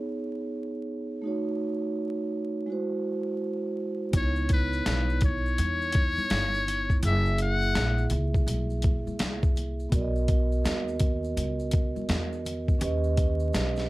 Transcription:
Already playing: B3 D#4 G#4 C#5
1.22 A3 D#4 F#4
1.27 C#5
2.66 G#3 E4 F#4
2.72 C5
4.11 C#2 B3 D#4 E4, kick, closed hi-hat, maracas
4.16 C#5
4.36 maracas
4.49 B4, kick, closed hi-hat, maracas
4.73 maracas
4.86 B1, snare, closed hi-hat, maracas
5.09 maracas
5.21 C#5, kick, closed hi-hat, low conga, maracas
5.46 maracas
5.58 E2, closed hi-hat, high conga, maracas
5.82 maracas
5.93 kick, closed hi-hat, maracas
6.17 muted upright bass stroke, high conga, maracas
6.30 G1, snare, closed hi-hat, maracas
6.54 maracas
6.67 closed hi-hat, low conga, maracas
6.90 kick, maracas
7.01 F#1 A#3 E4 G#4, closed hi-hat, maracas
7.05 E5
7.26 maracas
7.38 F#5, closed hi-hat, maracas
7.62 maracas
7.75 A#1, snare, closed hi-hat, maracas
7.98 maracas
8.10 C#2, closed hi-hat, low conga, maracas
8.34 kick, maracas
8.47 B1, closed hi-hat, high conga, maracas
8.70 maracas
8.82 kick, closed hi-hat, maracas
9.07 muted upright bass stroke, high conga, maracas
9.19 C2, snare, closed hi-hat, maracas
9.43 kick, maracas
9.56 closed hi-hat, low conga, maracas
9.80 maracas
9.89 B1 B3 F#4 A#4, kick, closed hi-hat
9.93 D5, maracas
10.01 D#5
10.16 maracas
10.28 kick, closed hi-hat, maracas
10.52 maracas
10.64 D#2, snare, closed hi-hat, maracas
10.88 maracas
11.00 kick, closed hi-hat, low conga, maracas
11.24 maracas
11.37 C#2, closed hi-hat, high conga, maracas
11.59 maracas
11.71 kick, closed hi-hat, maracas
11.95 muted upright bass stroke, high conga, maracas
12.09 E2, snare, closed hi-hat, maracas
12.32 maracas
12.45 closed hi-hat, low conga, maracas
12.68 kick, maracas
12.79 D#2 C#4 G4 B4, closed hi-hat, maracas
12.84 D#5
13.04 maracas
13.17 kick, closed hi-hat, maracas
13.40 maracas
13.53 B1, snare, closed hi-hat, maracas
13.76 snare, maracas

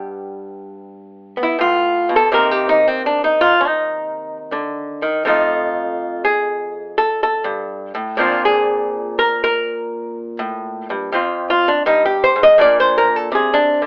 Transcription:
Already playing: G2 G3 B3
1.37 B3
1.43 E4
1.59 A2 F4
2.09 B2
2.16 A4
2.32 C3 D#3 A#3 C4 A#4
2.51 G4
2.69 D#4
2.87 C4
3.06 D4
3.24 D#4
3.41 F4
3.61 D#4
4.52 D3
5.02 D#3
5.25 F2 F3 A3 D#4 F4
6.25 G#4
6.98 A4
7.23 A4
7.44 G2
7.95 A2
8.17 A#2 F3 C4 D4 F4
8.45 G#4
9.19 A#4
9.44 A#4
10.39 A2
10.90 G2
11.12 F2 C4 F4
11.50 F4
11.68 D4
11.86 G2 D#4
12.05 G4
12.24 C5
12.36 G#2
12.43 D#5
12.58 A#2 A#3 D4 D5
12.80 C5
12.98 A#4
13.16 A4
13.32 C3 G#4
13.54 D4
13.82 D3

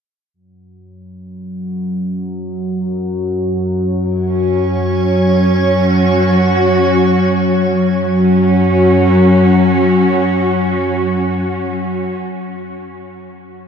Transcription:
0.34 F#2 F#3
4.04 F#3 C#5
4.28 C#4
5.69 F#4
7.73 F#2 F#3
7.90 C#4
8.03 F#4

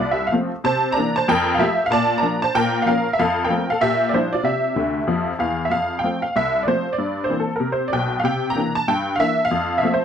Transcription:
Already playing: F4 D5
0.00 C2
0.11 G4 E5
0.27 F5
0.32 F3 A3 C4
0.64 C3 C5 A5
0.92 D5 A#5
0.97 E3 A#3 D4
1.16 C5 A5
1.28 F2 A#4 G5
1.55 F5
1.59 F3 A3 F4 G4 E5
1.86 F5
1.91 A#2 D5 A5
2.18 D5 A#5
2.23 F3 A#3 D4
2.42 C5 A5
2.55 A#2 A#4 G5
2.82 F3 F5
2.87 A#3 C#4 A#4 F5
3.13 E5
3.19 F2 A4 F5
3.44 A#4 G5
3.50 F3 A3 C4
3.70 A4 F5
3.81 A#2 G4 E5
4.09 D5
4.14 F3 G3 D4 E4 C5
4.33 F4 D5
4.43 C3 G4 E5
4.76 D2 D3
5.07 F2 F3
5.39 E2 E3 F5
5.65 E5
5.70 F2 F5
5.99 G5
6.04 F3 A3 C4
6.22 F5
6.36 C2 E5
6.63 A3 D5
6.67 F3 C4 C5
6.93 D5
6.98 G2
7.24 C5
7.30 E3 A#3 C4
7.40 A4
7.56 A#4
7.60 C3
7.72 C5
7.88 D5
7.93 B1 B2 G5
8.20 F5
8.24 C3 G5
8.50 A#5
8.56 E3 A#3 D4
8.75 A5
8.88 G2 G5
9.16 E3 A#3 F5
9.20 D4 E5
9.45 F5
9.51 F2
9.78 E5
9.83 F3 A3 C4
9.94 C5

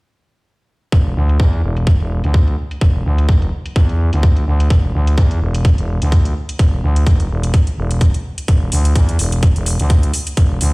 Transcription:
0.92 E1, kick, closed hi-hat
1.16 D2
1.29 closed hi-hat
1.40 E2, kick, closed hi-hat
1.53 closed hi-hat
1.63 E1
1.77 closed hi-hat
1.87 kick, closed hi-hat
2.00 E1, closed hi-hat
2.24 D2, closed hi-hat
2.34 kick, closed hi-hat
2.47 closed hi-hat
2.71 closed hi-hat
2.81 E1, kick, closed hi-hat
3.05 D2
3.18 closed hi-hat
3.29 F1, kick, closed hi-hat
3.42 closed hi-hat
3.66 closed hi-hat
3.76 E2, kick, closed hi-hat
3.89 closed hi-hat
4.13 D2, closed hi-hat
4.23 kick, closed hi-hat
4.36 closed hi-hat
4.47 D2
4.60 closed hi-hat
4.70 E1, kick, closed hi-hat
4.94 D2
5.07 closed hi-hat
5.18 E2, kick, closed hi-hat
5.31 closed hi-hat
5.41 E1
5.54 closed hi-hat
5.65 kick, closed hi-hat
5.78 E1, closed hi-hat
6.02 D2, closed hi-hat
6.12 kick, closed hi-hat
6.25 closed hi-hat
6.49 closed hi-hat
6.59 E1, kick, closed hi-hat
6.83 D2
6.96 closed hi-hat
7.07 F1, kick, closed hi-hat
7.20 closed hi-hat
7.30 E1
7.43 closed hi-hat
7.54 kick, closed hi-hat
7.67 closed hi-hat
7.77 E1
7.91 closed hi-hat
8.01 kick, closed hi-hat
8.14 closed hi-hat
8.38 closed hi-hat
8.48 E1, kick, closed hi-hat
8.72 D2, open hi-hat
8.85 closed hi-hat
8.95 E2, kick, closed hi-hat
9.09 closed hi-hat
9.19 E1, open hi-hat
9.32 closed hi-hat
9.43 kick, closed hi-hat
9.56 E1, closed hi-hat
9.66 open hi-hat
9.80 D2, closed hi-hat
9.90 kick, closed hi-hat
10.03 closed hi-hat
10.14 open hi-hat
10.27 closed hi-hat
10.37 E1, kick, closed hi-hat
10.61 D2, open hi-hat

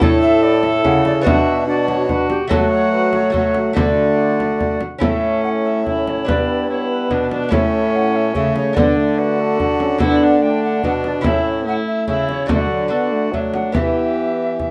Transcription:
0.00 A2 E4 A4 C#5, frame drum
0.21 E5
0.42 D5
0.63 E5, frame drum
0.84 C#3 F#5, frame drum
1.05 D5, frame drum
1.22 B3 D4 F#4 E5
1.26 B2 D4, frame drum
1.67 D4 F#4 D5
1.88 C#5, frame drum
2.08 D4 F#4 B4, frame drum
2.30 G4, frame drum
2.48 F#3 A3 F#4 A4, frame drum
2.52 F#3
2.72 C#5
2.92 B4
3.13 C#5, frame drum
3.30 A3 F#4 A4 C#5, frame drum
3.34 F#4
3.55 frame drum
3.73 D3 A3 F#4 A4 D5, frame drum
4.40 frame drum
4.61 frame drum
4.81 frame drum
4.98 A2 C#4 E4 A4, frame drum
5.03 A2 A3 C#4 E5
5.44 F#5
5.64 E5
5.86 C#4 E4 E5, frame drum
6.08 C#5, frame drum
6.25 G2 B3 D4 B4 D5, frame drum
6.29 G2
6.69 B3 E4 C#5
6.91 B4
7.10 B2 D4, frame drum
7.31 D4 B4, frame drum
7.49 A2 A3 C#4 E4 A4 E5, frame drum
7.53 C#4
7.95 F#5
8.15 E5
8.35 C#3 A3 E5, frame drum
8.56 C#5, frame drum
8.73 D3 B3 D4 F#4 A4 D5, frame drum
8.78 D3
8.97 A3
9.18 F#4 B4
9.40 A4
9.59 D4, frame drum
9.80 C#4 A4, frame drum
9.98 B3 D4 E4 F#4 A4 F#5, frame drum
10.23 D4
10.42 A3 D4 G5
10.64 F#5
10.83 B2 D4 F#5, frame drum
11.04 D5, frame drum
11.21 A2 C#4 E4 A4 E5, frame drum
11.25 C#4 E4
11.65 A3 E4 F#5
11.87 E5
12.08 C#3 E4 E5, frame drum
12.29 C#5, frame drum
12.46 D3 A3 D4 F#4 A4 D5, frame drum
12.50 F#4
12.55 E5
12.61 D5
12.71 F#3
12.88 B3 D4 F#4 A4 D5
13.12 A3
13.32 F#3 A3 D4 E5, frame drum
13.54 F#5, frame drum
13.72 E3 B3 E4 G4 E5, frame drum
14.59 frame drum

